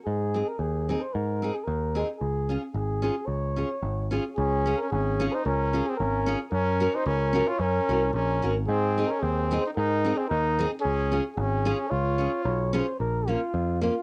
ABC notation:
X:1
M:2/4
L:1/16
Q:"Swing" 1/4=111
K:Db
V:1 name="Flugelhorn"
A3 B A3 c | B3 A B3 z | A3 z A4 | d6 z2 |
A3 B A3 c | B3 A B3 z | B3 c B3 d | B4 B3 z |
A3 B A3 c | B3 A B3 z | A3 z A4 | d4 d2 c2 |
[K:Bbm] B2 F4 F2 |]
V:2 name="Steel-string acoustic guitar"
z2 [CEA]2 z2 [CEA]2 | z2 [CEA]2 z2 [CEA]2 | z2 [DFA]2 z2 [DFA]2 | z2 [DFA]2 z2 [DFA]2 |
z2 [DFA]2 z2 [DFA]2 | z2 [DFA]2 z2 [DFA]2 | z2 [DGB]2 z2 [DGB]2 | z2 [DGB]2 z2 [DGB]2 |
z2 [CEA]2 z2 [CEA]2 | z2 [CEA]2 z2 [CEA]2 | z2 [DFA]2 z2 [DFA]2 | z2 [DFA]2 z2 [DFA]2 |
[K:Bbm] z2 [B,DF]2 z2 [B,DF]2 |]
V:3 name="Trumpet"
z8 | z8 | z8 | z8 |
D3 D D3 E | D3 C D3 z | D3 E D3 F | D4 D3 z |
C3 D C3 E | E3 C E3 z | D3 z D4 | F6 z2 |
[K:Bbm] z8 |]
V:4 name="Picked electric bass" clef=bass
A,,4 E,,4 | A,,4 E,,4 | D,,4 A,,,4 | D,,4 A,,,4 |
D,,4 A,,,4 | D,,4 A,,,4 | G,,4 D,,4 | G,,2 C,,2 B,,,2 A,,,2 |
A,,4 E,,4 | A,,4 E,,4 | D,,4 A,,,4 | D,,4 _C,,4 |
[K:Bbm] B,,,4 F,,4 |]